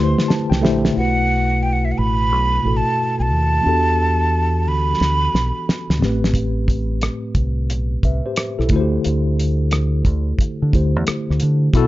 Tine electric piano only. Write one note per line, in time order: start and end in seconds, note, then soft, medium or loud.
0.00 0.49 D3 medium
0.00 0.50 A3 medium
0.00 0.50 E4 medium
0.00 0.50 G4 medium
0.00 0.96 B4 medium
0.00 0.54 C5 medium
0.28 0.47 A5 medium
0.50 0.61 G5 medium
0.61 0.89 D3 medium
0.61 0.89 A3 medium
0.61 0.90 E4 medium
0.61 0.90 G4 medium
0.61 0.91 C5 medium
0.61 0.93 E5 medium
0.92 2.59 B2 medium
0.92 2.59 A3 soft
0.92 2.60 E4 soft
0.98 2.61 F#4 soft
0.98 2.62 B4 medium
2.63 3.64 B2 soft
2.63 3.65 A3 soft
2.63 3.65 E4 soft
2.63 3.65 F#4 soft
2.67 3.66 A4 soft
3.61 5.95 E3 soft
3.61 5.96 B3 soft
3.61 5.96 D4 soft
3.66 5.97 F#4 soft
3.66 5.98 G4 soft
3.66 5.98 A4 medium
5.98 8.65 A2 medium
5.98 8.66 A3 medium
5.98 8.66 C4 medium
6.03 8.00 G4 medium
6.03 8.01 B4 medium
8.05 8.24 B4 soft
8.05 8.24 E5 medium
8.26 8.57 G4 soft
8.26 8.57 C5 medium
8.59 8.71 E4 soft
8.59 8.90 A4 medium
8.68 10.67 D3 medium
8.68 10.68 A3 medium
8.68 10.69 E4 medium
8.74 8.80 F#4 soft
8.74 10.71 C5 medium
8.81 10.74 G4 medium
10.72 11.73 D3 soft
10.72 11.74 A3 soft
10.72 11.74 E4 soft
10.72 11.75 G4 soft
10.72 11.75 C5 medium
11.73 11.87 B2 loud
11.73 11.87 B3 loud
11.73 11.87 E4 loud
11.73 11.87 F#4 medium
11.73 11.87 A4 loud